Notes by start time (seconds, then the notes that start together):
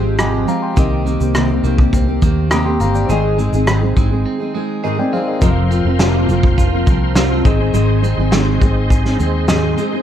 Already playing: G#1 F3 G#3 C4 G4 F5
0.18 F2 C3 F3 G#3 C4 G4 D#5 G#5, cross-stick, shaker
0.47 F3 G#3 C4 G4 F5 A#5, shaker
0.62 G5 C6
0.75 C2 C3 D#3 A#3 C4 G4 A#4, kick, shaker
0.79 D#5
1.05 D#3 A#3 C4 G4, shaker
1.20 C2 A#3 C4 G4, shaker
1.35 C3 D#3 A#3 C4 G4, cross-stick, shaker
1.50 A#3 C4 G4
1.63 C2 D#3 A#3 C4 G4, shaker
1.78 A#3 C4 G4, kick
1.93 C4, kick, shaker
2.07 A#3 C4 G4
2.22 D#2 D#3 A#3 C4 G4, kick, shaker
2.51 C3 D#3 A#3 C4 G4 A#5 D#6, cross-stick, shaker
2.65 A#3 C4 G4 G5 C6
2.80 G1 D#3 A#3 C4 G4 F5 A#5, shaker
2.95 D5 G5, shaker
3.07 G#1 G#2 D#3 G#3 C4 D#4 G#4, shaker
3.11 D#5
3.38 G#3 C4 D#4 G#4, shaker
3.53 G#1 G#3 C4 D#4 G#4, shaker
3.67 G#2 D#3 G#3 C4 D#4 G#4, cross-stick, shaker
3.82 G#3 C4 D#4 G#4
3.96 G#1 G#3 C4 D#4 G#4, kick, shaker
4.11 G#3 C4 D#4 G#4
4.26 C4
4.40 G#3 C4 D#4 G#4
4.55 G#3 C4 D#4 G#4
4.84 G#2 D#3 G#3 C4 D#4 G#4 A#4 D#5
4.98 G#3 C4 D#4 G#4 D5 G5
5.13 G#3 C4 D#4 G#4 C5 F5
5.28 A#4 D#5
5.40 F1 F2 C3 F3 C4 F4 A#4 C5 D#5 F5 C6, kick, shaker
5.50 F5
5.70 F3 C4 F4 A#4, shaker
5.85 F1 F3 C4 F4 A#4
5.99 F2 C3 F3 A#3 C4 F4 A#4, snare, shaker
6.29 F1 F3 C4 F4 A#4, shaker
6.43 kick
6.58 F4, kick, shaker
6.72 F3 C4 F4 A#4
6.87 C2 F3 C4 F4 A#4, kick, shaker
7.15 F2 C3 F3 C4 F4 A#4, snare, shaker
7.43 G#1 D#3 G#3 C4 D#4 G#4 D#5, kick, shaker
7.47 D#5
7.59 G#3 C4 D#4 G#4
7.73 G#1 G#2 D#3 G#3 C4 D#4 G#4, shaker
8.02 G#3 C4 D#4 G#4, shaker
8.18 G#1 G#3 C4 D#4 G#4
8.32 G#2 D#3 G#3 C4 D#4 G#4, snare, shaker
8.61 G#1 G#3 C4 D#4 G#4, kick, shaker
8.90 G#4, kick, shaker
9.05 G#3 C4 D#4 G#4, snare
9.19 D#2 G#3 C4 D#4 G#4, shaker
9.48 G#2 D#3 G#3 C4 D#4 G#4 D#5, snare, shaker
9.78 G#3 C4 D#4 G#4, shaker
9.92 G#3 C4 D#4 G#4